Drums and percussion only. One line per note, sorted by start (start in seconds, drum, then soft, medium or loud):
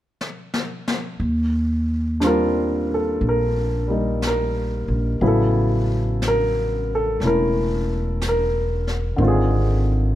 0.21 snare medium
0.54 snare medium
0.88 snare medium
1.21 brush sweep soft
2.21 brush sweep soft
2.21 snare soft
2.21 hi-hat pedal soft
3.22 brush sweep soft
4.22 brush sweep soft
4.22 snare soft
4.22 hi-hat pedal soft
5.22 brush sweep soft
6.22 brush sweep soft
6.22 snare soft
6.22 hi-hat pedal soft
7.21 brush sweep soft
7.21 snare soft
8.21 brush sweep soft
8.21 snare soft
8.21 hi-hat pedal soft
8.87 snare soft
9.21 brush sweep soft